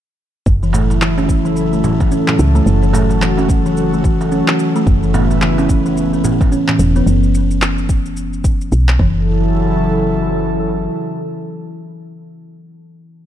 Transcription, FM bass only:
0.46 2.22 F#1 loud
2.39 2.61 C#2 loud
2.66 4.42 F#1 loud
4.87 6.62 F#1 medium
6.79 7.02 E1 loud
7.06 8.71 F#1 medium
8.72 8.99 B1 medium
8.99 10.88 F#1 loud

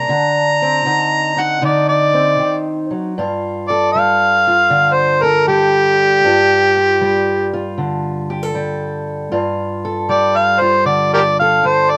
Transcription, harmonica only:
0.00 1.42 A#5 loud
1.41 1.64 F#5 medium
1.65 1.88 D5 medium
1.89 2.63 D5 loud
3.68 3.92 D5 medium
3.92 4.95 F5 medium
4.93 5.24 C5 medium
5.22 5.47 A#4 medium
5.48 7.75 G4 loud
10.11 10.38 D5 loud
10.36 10.62 F5 medium
10.60 10.85 C5 medium
10.86 11.11 D5 medium
11.14 11.22 G4 medium
11.14 11.20 A#4 medium
11.14 11.38 D5 medium
11.40 11.68 F5 medium
11.67 11.91 C5 medium
11.90 11.97 D5 medium

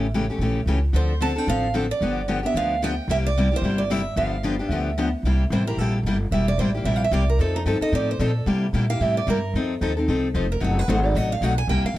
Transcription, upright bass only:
0.00 0.28 A1 medium
0.38 0.62 A#1 medium
0.66 0.89 C#2 medium
0.93 1.36 D2 medium
1.47 1.90 A1 medium
2.01 2.44 G1 medium
2.54 2.98 D2 medium
3.08 3.51 C2 medium
3.62 4.05 G1 medium
4.16 4.59 G1 medium
4.69 5.13 D2 medium
5.23 5.50 C2 medium
5.50 5.77 A1 medium
5.77 6.03 A#1 medium
6.03 6.30 G1 medium
6.31 6.58 E1 medium
6.58 6.84 A1 medium
6.84 7.11 A#1 medium
7.11 7.38 C2 medium
7.39 7.65 F2 medium
7.65 7.80 G2 medium
7.81 muted upright bass stroke soft
7.92 8.19 A2 medium
8.19 8.46 A#2 medium
8.46 8.72 C3 medium
8.73 8.99 A#2 medium
9.00 9.26 A2 medium
9.27 9.53 G2 medium
9.54 9.80 F2 medium
9.81 10.07 D#2 medium
10.08 10.34 C2 medium
10.34 10.61 F1 medium
10.61 10.87 F#1 medium
10.88 11.14 G#1 medium
11.15 11.40 A1 medium
11.41 11.67 B1 medium
11.67 11.82 C2 medium
11.84 muted upright bass stroke soft
11.94 11.98 E2 medium

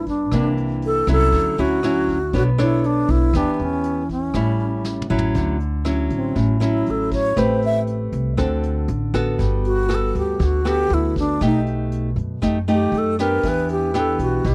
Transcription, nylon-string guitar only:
0.00 0.29 G2 medium
0.33 1.31 C3 soft
0.33 1.04 E3 medium
0.33 1.04 A#3 medium
0.33 1.04 D4 medium
1.08 1.57 F#3 medium
1.08 1.58 C#4 medium
1.08 1.58 E4 medium
1.34 2.31 D3 medium
1.58 1.79 F#3 medium
1.58 1.79 C#4 medium
1.58 1.79 E4 medium
1.83 2.17 F#3 medium
1.83 2.17 C#4 medium
1.83 2.17 E4 medium
2.34 3.32 B3 medium
2.34 2.48 D4 medium
2.34 2.49 A4 medium
2.34 2.49 C#5 medium
2.58 3.30 D4 medium
2.58 3.30 A4 medium
2.58 3.30 C#5 medium
3.34 4.33 E3 soft
3.34 4.02 B3 medium
3.34 4.03 G4 medium
4.34 5.33 A2 medium
4.34 5.06 G3 medium
4.34 5.07 C#4 medium
4.34 5.07 E4 medium
5.10 5.57 F#3 medium
5.10 5.57 C#4 medium
5.10 5.57 E4 medium
5.34 6.33 D3 medium
5.85 6.57 F#3 medium
5.85 6.57 C#4 medium
5.85 6.58 E4 medium
6.35 7.34 A2 medium
6.60 7.33 F#3 medium
6.60 7.33 C#4 medium
6.60 7.33 E4 medium
7.36 8.35 A3 soft
7.36 8.34 C4 medium
7.36 8.34 G4 medium
7.36 8.34 B4 medium
8.37 9.36 D3 medium
8.37 8.88 C4 medium
8.37 8.88 F#4 medium
8.37 8.88 A4 medium
9.14 9.86 B3 medium
9.14 9.86 F#4 medium
9.14 9.86 A4 medium
9.38 10.37 G3 medium
9.89 10.61 B3 medium
9.89 10.61 F#4 medium
9.89 10.61 A4 medium
10.39 11.38 D3 medium
10.65 11.37 B3 medium
10.65 11.37 F#4 medium
10.65 11.37 A4 medium
11.41 12.40 B2 soft
11.41 12.09 A3 medium
11.41 12.09 D#4 medium
11.41 12.10 G4 medium
12.42 12.57 A3 medium
12.42 12.57 D#4 medium
12.42 12.57 G4 medium
12.68 13.14 A3 medium
12.68 13.15 D#4 medium
12.68 13.15 G4 medium
13.19 13.91 B3 medium
13.19 13.91 D4 medium
13.19 13.91 G4 medium
13.44 14.42 E3 medium
13.94 14.44 B3 medium
13.94 14.45 D4 medium
13.94 14.45 G4 medium
14.45 14.55 B2 medium

